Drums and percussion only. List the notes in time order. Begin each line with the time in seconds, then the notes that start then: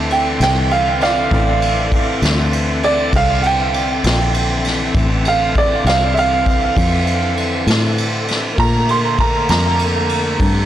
0.10 ride
0.40 snare, ride
0.71 ride
1.01 snare, ride
1.31 kick, ride
1.62 ride
1.92 kick, ride
2.22 snare, ride
2.53 ride
2.83 ride
3.13 kick, ride
3.43 ride
3.74 ride
4.04 snare, ride
4.34 ride
4.64 snare, ride
4.95 kick, ride
5.25 ride
5.55 kick, ride
5.86 snare, ride
6.17 ride
6.46 kick, ride
6.77 kick, ride
7.07 ride
7.37 ride
7.67 snare, ride
7.98 ride
8.28 snare, ride
8.58 kick, ride
8.89 ride
9.18 kick, ride
9.49 snare, ride
9.79 ride
10.09 ride
10.40 kick, ride